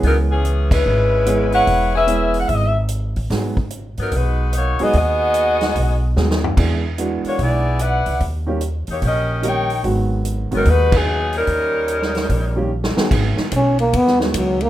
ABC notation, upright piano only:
X:1
M:4/4
L:1/8
Q:"Swing" 1/4=147
K:G#m
V:1 name="Upright piano"
[E,G,B,CG]2 z4 [E,G,B,CG]2- | [E,G,B,CG] z [E,G,B,CG]3 z3 | [F,G,B,DG] z6 [F,G,B,DG] | z6 [F,G,B,DG] z |
[E,G,B,=DG] z [E,G,B,DF]3 z3 | z [D,=G,A,C=G] z4 [D,G,A,CG] z | [D,F,G,B,F]3 [D,F,G,B,C] z4 | z4 z [D,=G,A,C=G] z [D,F,^G,B,^G]- |
[D,F,G,B,G]2 z3 [D,F,G,B,F]3 |]